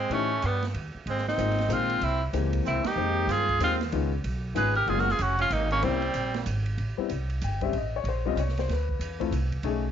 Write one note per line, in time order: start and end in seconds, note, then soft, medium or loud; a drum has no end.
0.00 0.14 G#3 medium
0.00 0.15 C4 medium
0.10 0.41 A2 medium
0.10 0.29 E3 medium
0.10 0.29 A3 medium
0.10 0.45 A3 medium
0.10 0.29 C#4 medium
0.10 0.48 C#4 medium
0.10 0.30 D#4 medium
0.10 0.30 G4 medium
0.10 ride medium
0.42 0.74 G2 medium
0.42 0.63 G3 medium
0.42 hi-hat pedal soft
0.42 ride medium
0.47 0.65 B3 medium
0.62 snare soft
0.62 ride soft
0.74 0.93 D#2 medium
0.74 ride medium
0.95 muted upright bass stroke soft
1.06 1.37 G#1 medium
1.06 1.26 G#3 medium
1.06 ride medium
1.10 1.27 C4 medium
1.18 snare soft
1.28 1.71 C4 medium
1.28 1.75 D#4 medium
1.28 snare soft
1.37 1.68 G#1 medium
1.37 1.56 D#3 medium
1.37 1.56 G#3 soft
1.37 1.56 A#3 soft
1.37 1.56 C4 soft
1.37 1.57 F4 medium
1.37 hi-hat pedal medium
1.37 ride medium
1.50 snare soft
1.58 snare soft
1.58 ride soft
1.68 2.00 A#1 medium
1.68 2.01 D#3 medium
1.68 2.01 G#3 medium
1.68 2.01 A#3 medium
1.68 2.02 C4 medium
1.68 2.02 F4 medium
1.68 hi-hat pedal medium
1.68 ride medium
1.73 2.06 F4 medium
1.90 ride soft
2.01 2.32 C2 medium
2.01 2.22 C4 medium
2.01 2.23 E4 medium
2.01 ride medium
2.33 2.64 C#2 medium
2.33 2.81 E3 medium
2.33 2.81 G#3 medium
2.33 2.81 A#3 medium
2.33 2.82 C4 medium
2.33 2.82 G4 medium
2.33 hi-hat pedal medium
2.33 ride medium
2.53 kick medium
2.53 ride medium
2.65 2.84 C2 medium
2.65 2.86 C4 medium
2.65 2.88 E4 medium
2.65 hi-hat pedal medium
2.84 3.30 D#4 medium
2.84 3.33 G4 medium
2.84 muted upright bass stroke soft
2.84 snare medium
2.84 ride medium
2.96 3.26 F2 medium
2.96 3.45 D#3 medium
2.96 3.45 G#3 soft
2.96 3.45 A#3 soft
2.96 3.45 C4 medium
2.96 3.45 G4 medium
3.27 3.58 G2 medium
3.27 3.61 F4 medium
3.27 snare soft
3.27 hi-hat pedal medium
3.27 ride medium
3.32 3.62 G#4 medium
3.49 kick medium
3.49 ride soft
3.59 3.91 D#2 medium
3.59 3.78 D#3 medium
3.59 3.78 G#3 medium
3.59 3.79 A#3 soft
3.59 3.79 C4 soft
3.59 3.80 C4 medium
3.59 3.79 G4 medium
3.59 hi-hat pedal medium
3.59 ride medium
3.64 3.75 F4 medium
3.81 snare medium
3.81 ride soft
3.92 4.23 C#2 medium
3.92 4.10 D#3 medium
3.92 4.10 G#3 medium
3.92 4.11 B3 medium
3.92 4.11 C#4 medium
3.92 4.11 F4 medium
3.92 ride medium
4.24 4.55 B1 medium
4.24 ride medium
4.54 4.86 G#1 medium
4.54 4.73 D#3 medium
4.54 4.73 G#3 medium
4.54 4.74 B3 medium
4.54 4.74 C#4 medium
4.54 4.74 F4 medium
4.54 4.75 G#4 medium
4.54 4.76 B4 medium
4.54 hi-hat pedal medium
4.54 ride medium
4.75 4.90 G4 medium
4.75 4.91 A#4 loud
4.75 ride soft
4.86 5.18 F#1 medium
4.86 5.05 F#3 medium
4.86 5.05 G#3 medium
4.86 5.06 A#3 medium
4.86 5.06 C#4 medium
4.86 5.06 F4 medium
4.86 5.01 F4 medium
4.86 5.02 G#4 medium
4.86 ride medium
4.98 5.12 F#4 medium
4.98 5.13 A#4 loud
4.98 snare soft
5.08 5.22 F4 medium
5.08 5.24 G#4 medium
5.08 snare soft
5.19 5.50 F1 medium
5.19 5.38 C#4 medium
5.19 5.41 F#4 medium
5.19 hi-hat pedal medium
5.19 ride medium
5.38 5.54 C#4 medium
5.38 5.55 F4 loud
5.38 ride soft
5.50 5.82 G#1 loud
5.50 5.71 A#3 medium
5.50 5.72 D#4 medium
5.50 hi-hat pedal medium
5.50 ride medium
5.71 5.85 A#3 medium
5.71 5.86 C#4 medium
5.71 ride soft
5.82 6.14 C2 medium
5.82 6.01 G3 medium
5.82 6.47 G3 medium
5.82 6.01 A#3 medium
5.82 6.01 C4 medium
5.82 6.47 C4 medium
5.82 6.01 C#4 medium
5.82 6.01 E4 medium
5.82 ride medium
6.02 ride soft
6.14 6.45 A#1 medium
6.14 hi-hat pedal medium
6.14 ride medium
6.34 snare medium
6.34 ride medium
6.46 6.77 G#1 medium
6.46 hi-hat pedal medium
6.46 ride medium
6.66 ride soft
6.78 6.97 A1 medium
6.78 ride medium
6.97 7.09 G3 medium
6.97 7.09 B3 medium
6.97 7.09 C4 medium
6.97 7.09 E4 medium
6.97 muted upright bass stroke soft
7.09 7.41 C2 medium
7.09 hi-hat pedal medium
7.09 ride medium
7.30 ride soft
7.42 7.72 G1 medium
7.42 7.63 G5 medium
7.42 hi-hat pedal medium
7.42 ride medium
7.61 7.72 G3 medium
7.61 7.73 C4 medium
7.61 7.73 C#4 medium
7.61 7.73 G4 medium
7.61 7.74 E5 medium
7.61 kick medium
7.61 ride soft
7.73 8.03 A1 medium
7.73 ride medium
7.77 7.95 D#5 medium
7.96 8.07 C#5 medium
8.04 8.35 A#1 medium
8.04 ride medium
8.09 8.27 C5 medium
8.25 8.36 G3 medium
8.25 8.36 C4 medium
8.25 8.37 C#4 medium
8.25 8.37 F4 medium
8.25 8.38 D#5 medium
8.36 8.67 C2 medium
8.36 8.58 C#5 medium
8.36 hi-hat pedal medium
8.36 ride medium
8.48 snare soft
8.57 8.70 C5 medium
8.57 snare soft
8.57 ride soft
8.69 8.99 D2 medium
8.69 snare soft
8.69 ride medium
8.73 9.62 B4 medium
8.89 kick soft
8.99 9.31 E2 medium
8.99 hi-hat pedal medium
8.99 ride medium
9.20 9.31 A3 medium
9.20 9.31 C4 medium
9.20 9.31 E4 medium
9.20 9.32 F4 medium
9.20 kick soft
9.20 ride soft
9.31 9.63 C2 medium
9.31 hi-hat pedal medium
9.31 ride medium
9.52 kick soft
9.52 ride soft
9.63 9.92 B1 medium
9.63 9.82 A3 medium
9.63 9.83 C#4 medium
9.63 9.83 D#4 medium
9.63 9.83 G#4 medium
9.63 ride medium